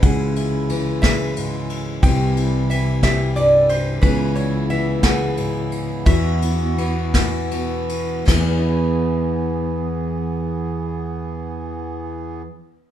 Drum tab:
CC |------|------|------|------|
RD |xxxxxx|xxxxxx|xxxxxx|xxxxxx|
SD |---o--|---o--|---o--|---o--|
BD |o--o--|o--o--|o--o--|o--o--|

CC |x-----|------|
RD |------|------|
SD |o-----|------|
BD |o-----|------|